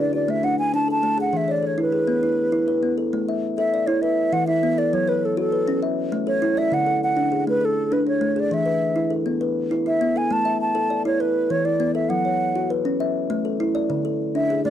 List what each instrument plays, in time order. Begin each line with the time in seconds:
Already playing: kalimba G#4 B4
0.00 kalimba D4, flute D5
0.13 kalimba F#4, flute D5
0.28 kalimba A3, flute E5
0.43 kalimba D4, flute F#5
0.59 flute G#5
0.74 kalimba D4, flute A5
0.88 kalimba A4, flute A5
1.03 kalimba A3
1.18 kalimba G#4, flute F#5
1.33 kalimba E3, flute E5
1.48 kalimba C#5, flute D5
1.63 kalimba A4
1.67 flute C#5
1.78 kalimba E4
1.82 flute B4
1.92 kalimba G#4
2.07 kalimba B3
2.23 kalimba E4
2.52 kalimba E4
2.68 kalimba B4
2.83 kalimba B3
2.98 kalimba A4
3.13 kalimba A3
3.29 kalimba E5
3.58 kalimba A4, flute E5
3.74 kalimba D5
3.87 kalimba E4, flute C#5
4.02 kalimba B4, flute E5
4.33 kalimba E3, flute F#5
4.47 kalimba E4, flute E5
4.63 kalimba B3
4.78 kalimba A4, flute D5
4.93 kalimba F#3, flute C#5
5.08 flute B4, kalimba C#5
5.25 flute A4
5.37 kalimba F#4, flute A4
5.52 kalimba B4
5.68 kalimba C#4
5.82 kalimba E5
6.12 kalimba A3
6.27 kalimba A4, flute C#5
6.42 kalimba E4
6.57 kalimba D5, flute E5
6.72 kalimba D3, flute F#5
6.86 kalimba A4
7.03 flute F#5
7.17 kalimba D4
7.32 kalimba G#4
7.47 kalimba A3, flute B4
7.61 kalimba A4, flute A4
7.92 kalimba D4, flute B4
8.07 kalimba D4, flute C#5
8.21 kalimba A3
8.36 kalimba G#4, flute D5
8.51 kalimba E3, flute E5
8.66 kalimba B4
8.96 kalimba E4
9.10 kalimba A4
9.26 kalimba B3
9.41 kalimba B4
9.71 kalimba E4
9.86 kalimba E4, flute E5
10.01 kalimba B3
10.16 kalimba A4, flute G#5
10.31 kalimba A3, flute A5
10.45 kalimba E5
10.61 flute A5
10.75 kalimba A4
10.90 kalimba D5
11.05 kalimba E4, flute C#5
11.20 kalimba B4, flute B4
11.50 kalimba E3, flute C#5
11.65 kalimba E4, flute D5
11.80 kalimba B3
11.95 kalimba A4, flute E5
12.09 kalimba F#3, flute F#5
12.25 kalimba C#5
12.55 kalimba F#4
12.70 kalimba B4
12.85 kalimba C#4
13.00 kalimba E5
13.30 kalimba A3
13.45 kalimba A4
13.60 kalimba E4
13.75 kalimba D5
13.90 kalimba D3
14.05 kalimba A4
14.35 kalimba D4, flute E5
14.50 kalimba G#4
14.64 kalimba A3, flute D5